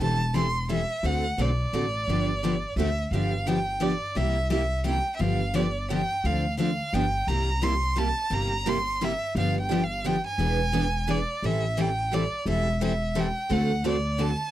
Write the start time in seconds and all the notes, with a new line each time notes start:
0.00 E1 E3 G3 C4 E4 A4 A5
0.34 E3 G3 C4 E4 A4 C6
0.69 E3 G3 C4 E4 A4 E5
1.03 D2 D3 A3 C4 F#4 A4 F#5
1.38 B1 D3 A3 C4 F#4 A4 D5
1.73 A1 D3 A3 C4 F#4 A4
2.08 G1 D3 F3 B3 D4 G4
2.43 D3 F3 B3 D4 G4
2.76 D2 D3 A3 C4 F#4 A4 E5
3.11 G1 D3 F3 B3 D4 G4 F5
3.46 D3 F3 B3 D4 G4 G5
3.81 D3 F3 B3 D4 G4 D5
4.16 C2 C3 G3 A#3 E4 G4 E5
4.52 C3 G3 A#3 E4 G4 E5
4.86 C3 G3 A#3 E4 G4 G5
5.16 E5
5.20 G1 D3 F3 B3 D4 G4 F5
5.55 D3 F3 B3 D4 G4 D5
5.89 D3 F3 B3 D4 G4 G5
6.24 D2 D3 F3 C4 D4 A4 F5
6.59 D3 F3 C4 D4 A4 F5
6.93 G1 D3 F3 B3 D4 G4 G5
7.27 C2 C3 G3 A#3 E4 G4 A#5
7.62 C3 G3 A#3 E4 G4 C6
7.97 C3 G3 A#3 E4 G4 A5
8.30 G1 C3 G3 A#3 E4 G4 A#5
8.66 C3 G3 A#3 E4 G4 C6
9.01 C3 G3 A#3 E4 G4 E5
9.35 G1 D3 F3 B3 D4 G4 F5
9.61 G5
9.69 D3 F3 B3 D4 G4
9.83 F5
10.04 D3 F3 B3 D4 G4 G5
10.26 G#5
10.38 E1 E3 B3 D4 G#4 B4
10.73 E3 B3 D4 G#4 B4
11.07 E3 B3 D4 G#4 B4 D5
11.42 A1 E3 G3 C4 E4 A4 E5
11.78 E3 G3 C4 E4 A4 G5
12.11 E3 G3 C4 E4 A4 D5
12.46 E1 E3 G3 C4 E4 A4 E5
12.81 E3 G3 C4 E4 A4 E5
13.15 E3 G3 C4 E4 A4 G5
13.49 D2 D3 A3 C4 F#4 A4 F#5
13.84 D3 A3 C4 F#4 A4 D5
14.18 D3 A3 C4 F#4 A4 A5